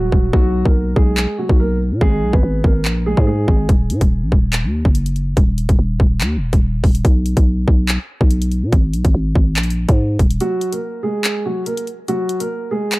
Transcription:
Already playing: 808-style bass D#1, grand piano F#3 F#4, downlifter
0.12 808-style bass D#1, kick
0.33 808-style bass B1, grand piano F#3 F#4, kick
0.65 808-style bass B1, grand piano A#3 A#4, kick
0.96 808-style bass B1, grand piano G#3 G#4, kick
1.17 clap
1.38 grand piano F#3 F#4
1.49 808-style bass B1, kick
1.60 grand piano A#3 A#4
1.91 808-style bass B2
2.01 808-style bass G#1, grand piano G#3 G#4, kick
2.22 808-style bass B1
2.33 808-style bass G#1, grand piano B3 B4, kick
2.43 808-style bass G#1
2.64 808-style bass G#1, grand piano A#3 A#4, kick
2.85 808-style bass A#1, clap
3.06 grand piano G#3 G#4
3.17 808-style bass G#2, kick
3.27 grand piano G#3 G#4
3.48 808-style bass G#1, kick
3.69 808-style bass D#1, kick, closed hi-hat
3.90 808-style bass A#2, closed hi-hat
4.01 808-style bass D#1, kick, closed hi-hat
4.22 808-style bass A#1
4.32 808-style bass D#1, kick
4.53 clap, closed hi-hat
4.64 808-style bass D#2
4.85 808-style bass F#1, kick
4.95 closed hi-hat
5.06 closed hi-hat
5.16 closed hi-hat
5.37 808-style bass D#1, kick, closed hi-hat
5.58 closed hi-hat
5.69 808-style bass D#1, kick, closed hi-hat
5.79 808-style bass D#1
6.00 808-style bass D#1, kick
6.21 808-style bass D#2, clap, closed hi-hat
6.37 808-style bass D#1
6.53 808-style bass D#1, kick, closed hi-hat
6.84 808-style bass D#1, kick, open hi-hat
6.95 closed hi-hat
7.05 808-style bass B1, kick, closed hi-hat
7.26 closed hi-hat
7.37 808-style bass B1, kick, closed hi-hat
7.68 808-style bass B1, kick
7.89 clap, closed hi-hat
8.21 808-style bass B1, kick
8.31 closed hi-hat
8.42 closed hi-hat
8.52 closed hi-hat
8.63 808-style bass B2
8.73 808-style bass G#1, kick, closed hi-hat
8.94 808-style bass B1, closed hi-hat
9.05 808-style bass G#1, kick, closed hi-hat
9.14 808-style bass G#1
9.35 808-style bass G#1, kick
9.56 808-style bass A#1, clap, closed hi-hat
9.63 closed hi-hat
9.70 closed hi-hat
9.89 808-style bass G#2, kick, closed hi-hat
10.19 808-style bass D#1, kick, closed hi-hat
10.31 closed hi-hat
10.40 grand piano F#3 F#4, closed hi-hat
10.61 closed hi-hat
10.73 grand piano A#3 A#4, closed hi-hat
11.03 grand piano G#3 G#4
11.24 clap, closed hi-hat
11.46 grand piano F#3 F#4
11.66 grand piano A#3 A#4, closed hi-hat
11.77 closed hi-hat
11.87 closed hi-hat
12.08 grand piano F#3 F#4, closed hi-hat
12.29 closed hi-hat
12.40 grand piano A#3 A#4, closed hi-hat
12.71 grand piano G#3 G#4
12.92 clap, closed hi-hat

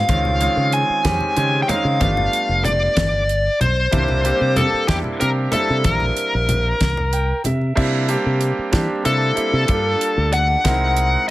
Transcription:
Already playing: lead electric guitar F5
0.09 fingered electric bass C#2, grand piano D#3 G#3 C4 C#4 F4, kick, closed hi-hat, high conga
0.25 low conga
0.41 grand piano D#3 G#3 C4 C#4 F4, closed hi-hat
0.57 fingered electric bass C#3, low conga
0.72 lead electric guitar G#5, closed hi-hat
0.89 muted fingered electric bass stroke
1.04 fingered electric bass F2, grand piano D#3 G#3 C4 C#4 G4, kick, snare, closed hi-hat, high conga
1.20 low conga
1.36 fingered electric bass C#3, grand piano D#3 G#3 C4 C#4 G4, closed hi-hat
1.62 lead electric guitar G5
1.68 grand piano D#3 G#3 C4 C#4 D#4, lead electric guitar F5, muted fingered electric bass stroke, closed hi-hat, low conga
1.84 fingered electric bass C#3, low conga
2.00 fingered electric bass G1, grand piano G3 A3 B3 D4 F4, kick, closed hi-hat, high conga
2.17 low conga
2.33 closed hi-hat
2.49 fingered electric bass F1, low conga
2.64 lead electric guitar D5, closed hi-hat, low conga
2.97 fingered electric bass G1, kick, snare, closed hi-hat, high conga
3.29 closed hi-hat
3.60 fingered electric bass B1, lead electric guitar C5, closed hi-hat, low conga
3.77 low conga
3.91 fingered electric bass C2, grand piano G3 A#3 C4 D4 E4, kick, closed hi-hat, high conga
4.08 low conga
4.24 grand piano G3 A#3 C4 D4 G4, closed hi-hat
4.41 fingered electric bass C3, low conga
4.56 lead electric guitar A4, closed hi-hat, low conga
4.73 muted fingered electric bass stroke
4.87 fingered electric bass E2, grand piano G3 A#3 C4 D4 E4, lead electric guitar G4, kick, snare, closed hi-hat, high conga
5.04 low conga
5.19 fingered electric bass C3, grand piano G3 A#3 C4 D4 G4, lead electric guitar A#4, closed hi-hat
5.52 grand piano G3 A#3 C4 D4 E4, lead electric guitar A4, muted fingered electric bass stroke, closed hi-hat, low conga
5.68 fingered electric bass C3, low conga
5.84 fingered electric bass A#1, lead electric guitar A#4, kick, closed hi-hat, high conga
6.00 low conga
6.17 closed hi-hat
6.35 fingered electric bass A#1
6.49 closed hi-hat, low conga
6.81 fingered electric bass C2, kick, snare, closed hi-hat, high conga
6.97 low conga
7.12 grand piano G5, closed hi-hat, low conga
7.44 fingered electric bass C3, grand piano E5, closed hi-hat, low conga
7.61 low conga
7.75 fingered electric bass C3, grand piano G3 A#3 C4 D4 E4, kick, crash
8.08 grand piano G3 A#3 C4 D4 G4, closed hi-hat
8.26 fingered electric bass C3
8.41 closed hi-hat
8.58 muted fingered electric bass stroke
8.71 fingered electric bass E3, grand piano G3 A#3 C4 D4 G4, kick, snare, closed hi-hat
9.04 fingered electric bass C3, grand piano G3 A#3 C4 D4 E4, lead electric guitar A4, closed hi-hat
9.35 grand piano G3 A#3 C4 D4 E4, muted fingered electric bass stroke, closed hi-hat
9.53 fingered electric bass C3
9.67 fingered electric bass G2, grand piano G3 A#3 D4 F4 A4, kick, closed hi-hat
10.01 closed hi-hat
10.17 fingered electric bass D2
10.33 lead electric guitar F#5, closed hi-hat
10.64 fingered electric bass C2, grand piano G#3 C4 D#4 E4 A#4, kick, snare, closed hi-hat
10.97 closed hi-hat

